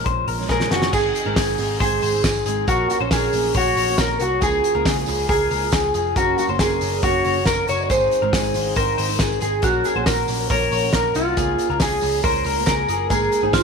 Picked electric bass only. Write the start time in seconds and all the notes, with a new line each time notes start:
0.06 A#1
0.28 A#1
0.49 A#1
0.71 F#1
0.93 G#1
1.26 G#1
1.36 G#1
1.59 G#1
1.80 G#1
2.02 G#1
2.24 G#1
2.46 G#1
2.68 A#1
3.00 A#1
3.11 A#1
3.33 A#1
3.55 A#1
3.76 A#1
3.98 A#1
4.21 C2
4.42 C#2
4.75 C#2
4.86 C#2
5.07 C#2
5.29 C#2
5.51 C#2
5.73 C#2
5.94 F1
6.16 F#1
6.49 F#1
6.59 F#1
6.81 F#1
7.03 F#1
7.25 F#1
7.46 F#1
7.69 F#1
7.90 G#1
8.22 G#1
8.33 G#1
8.55 G#1
8.76 G#1
8.98 G#1
9.20 G#1
9.42 G#1
9.63 A#1
9.96 A#1
10.07 A#1
10.29 A#1
10.50 A#1
10.72 A#1
10.93 A#1
11.15 C2
11.37 C#2
11.70 C#2
12.02 C#2
12.24 C#2
12.45 C#2
12.67 C#2
12.89 F#1
13.10 G#1
13.43 G#1
13.53 G#1